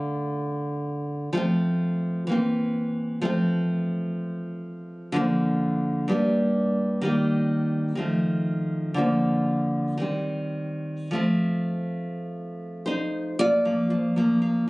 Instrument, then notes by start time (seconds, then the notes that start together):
nylon-string guitar
Already playing: D3 A3 F4
1.33 F3 A3
1.37 C4
2.27 E3 A#3
2.32 C4
3.21 F3 A3 C4
5.12 D3 F3 A#3
6.08 G2 G3
6.12 A#3
7.01 D#3 G3 A#3
7.95 D#3 F3 A3
8.94 D3 F3
8.98 A#3
9.98 D#3 G3 C4
11.11 F3 A3 C4
12.86 D#4 C5
13.39 A#2 F4 D5
13.65 F3 A#3
13.90 F3
14.16 F3 A#3
14.42 A#3